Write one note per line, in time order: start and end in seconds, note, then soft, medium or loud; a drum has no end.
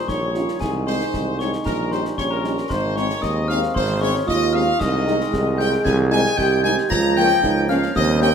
0.00 0.56 D#3 medium
0.00 0.60 G3 medium
0.08 0.47 A#1 medium
0.08 0.20 D#4 medium
0.08 0.61 C#5 medium
0.08 0.58 C#5 loud
0.08 0.57 C#6 medium
0.08 concert bass drum medium
0.08 snare medium
0.34 0.43 G3 medium
0.34 0.43 C#4 medium
0.34 0.43 D#4 medium
0.34 0.59 F4 medium
0.34 snare medium
0.48 snare medium
0.60 1.04 C2 medium
0.60 2.66 D#3 medium
0.60 1.65 G#3 medium
0.60 2.19 D#4 medium
0.60 0.87 G#4 medium
0.60 0.73 G#4 medium
0.60 0.85 G#5 medium
0.60 concert bass drum medium
0.60 snare medium
0.60 crash soft
0.86 0.96 G#3 medium
0.86 0.96 C4 medium
0.86 0.96 D#4 medium
0.86 1.36 C5 medium
0.86 1.36 C5 loud
0.86 1.36 C6 medium
0.86 snare medium
1.00 snare medium
1.13 1.57 C2 medium
1.13 concert bass drum medium
1.13 snare medium
1.39 1.49 G#3 medium
1.39 1.49 C4 medium
1.39 1.49 D#4 medium
1.39 1.45 C#5 medium
1.39 1.52 C#5 loud
1.39 1.64 C#6 medium
1.39 snare medium
1.53 snare medium
1.65 2.09 A#1 medium
1.65 2.67 G3 medium
1.65 1.90 A#4 medium
1.65 1.90 A#4 loud
1.65 1.90 A#5 medium
1.65 concert bass drum medium
1.65 snare medium
1.91 2.01 G3 medium
1.91 2.01 C#4 medium
1.91 2.01 D#4 medium
1.91 2.18 C5 medium
1.91 2.04 C5 loud
1.91 2.16 C6 medium
1.91 snare medium
2.05 snare medium
2.17 2.62 A#1 medium
2.17 2.70 C#4 medium
2.17 2.24 C#5 loud
2.17 2.30 C#5 medium
2.17 2.30 C#6 loud
2.17 concert bass drum medium
2.17 snare medium
2.30 2.68 A#4 loud
2.30 2.68 A#4 medium
2.30 2.67 A#5 medium
2.44 2.54 G3 medium
2.44 2.54 C#4 medium
2.44 2.54 D#4 medium
2.44 snare medium
2.58 snare medium
2.69 3.14 G#1 medium
2.69 4.63 D#3 medium
2.69 4.63 G#3 medium
2.69 3.02 D#4 medium
2.69 2.97 C5 loud
2.69 2.95 C5 medium
2.69 2.94 C6 medium
2.69 concert bass drum medium
2.69 snare medium
2.69 crash soft
2.96 3.06 G#3 medium
2.96 3.06 C4 medium
2.96 3.06 D#4 medium
2.96 3.23 C#5 loud
2.96 3.03 C#5 loud
2.96 3.21 C#6 medium
2.96 snare medium
3.10 snare medium
3.22 3.67 D#2 medium
3.22 4.24 C4 medium
3.22 3.29 D#5 medium
3.22 3.49 D#5 loud
3.22 3.47 D#6 medium
3.22 concert bass drum medium
3.22 snare medium
3.48 3.59 G#3 medium
3.48 3.59 C4 medium
3.48 3.59 D#4 medium
3.48 3.61 F5 loud
3.48 3.74 F5 loud
3.48 3.73 F6 loud
3.48 snare medium
3.63 snare medium
3.74 4.19 G#1 loud
3.74 4.00 C5 loud
3.74 3.82 C5 medium
3.74 3.99 C6 loud
3.74 concert bass drum medium
3.74 snare medium
4.01 4.11 G#3 medium
4.01 4.11 C4 medium
4.01 4.11 D#4 medium
4.01 4.26 C#5 loud
4.01 4.14 C#5 loud
4.01 4.26 C#6 medium
4.27 4.72 D#2 medium
4.27 4.81 F4 loud
4.27 4.54 D#5 loud
4.27 4.53 D#5 loud
4.27 4.52 D#6 loud
4.27 concert bass drum medium
4.27 snare medium
4.53 4.64 G#3 medium
4.53 4.64 C4 medium
4.53 4.64 D#4 medium
4.53 4.80 F5 loud
4.53 4.81 F5 loud
4.53 4.78 F6 loud
4.80 5.24 C2 loud
4.80 6.86 D#3 medium
4.80 6.86 G#3 medium
4.80 5.34 D#4 medium
4.80 5.59 D#5 loud
4.80 5.55 D#6 medium
4.80 concert bass drum medium
4.80 snare medium
4.80 crash medium
5.06 5.16 G#3 medium
5.06 5.16 C4 medium
5.06 5.16 D#4 medium
5.06 snare medium
5.21 snare medium
5.32 5.76 C2 loud
5.32 6.37 G#4 loud
5.32 concert bass drum medium
5.32 snare medium
5.58 5.68 G#3 medium
5.58 5.68 C4 medium
5.58 5.68 D#4 medium
5.58 5.71 G5 loud
5.58 5.85 G5 loud
5.58 5.83 G6 loud
5.58 snare medium
5.73 snare medium
5.85 6.29 C2 loud
5.85 5.97 G#5 loud
5.85 5.92 G#5 loud
5.85 6.09 G#6 loud
5.85 concert bass drum loud
5.85 snare medium
6.11 6.21 G#3 medium
6.11 6.21 C4 medium
6.11 6.21 D#4 medium
6.11 6.36 G#5 loud
6.11 6.36 G#6 loud
6.11 snare medium
6.25 snare medium
6.37 6.77 C2 loud
6.37 6.92 G4 loud
6.37 6.64 G5 loud
6.37 6.62 G6 loud
6.37 concert bass drum medium
6.37 snare medium
6.64 6.74 G#3 medium
6.64 6.74 C4 medium
6.64 6.74 D#4 medium
6.64 6.76 G#5 loud
6.64 6.71 G#5 loud
6.64 6.88 G#6 loud
6.64 snare medium
6.78 snare medium
6.90 7.34 C#2 loud
6.90 7.91 F3 medium
6.90 7.95 A#3 medium
6.90 7.43 F4 loud
6.90 7.15 A#5 loud
6.90 7.15 A#6 loud
6.90 concert bass drum loud
6.90 snare medium
6.90 crash soft
7.17 7.26 F3 loud
7.17 7.27 A#3 medium
7.17 7.26 C#4 medium
7.17 7.65 G5 loud
7.17 7.66 G5 loud
7.17 7.66 G6 loud
7.17 snare medium
7.30 snare medium
7.42 7.86 C#2 loud
7.42 7.68 D#4 loud
7.42 concert bass drum medium
7.42 snare medium
7.69 7.79 F3 medium
7.69 7.79 A#3 medium
7.69 7.79 C#4 medium
7.69 7.94 C#4 medium
7.69 7.94 F5 loud
7.69 7.96 F5 loud
7.69 7.94 F6 loud
7.69 snare medium
7.83 snare medium
7.95 8.35 D#2 loud
7.95 8.35 G3 medium
7.95 8.35 C4 loud
7.95 8.35 C#4 medium
7.95 8.02 D#5 loud
7.95 8.20 D#5 loud
7.95 8.20 D#6 loud
7.95 concert bass drum medium
7.95 snare medium
8.21 8.31 G3 medium
8.21 8.31 A#3 medium
8.21 8.30 C#4 medium
8.21 8.28 G5 loud
8.21 8.35 G5 loud
8.21 8.35 G6 loud
8.21 snare medium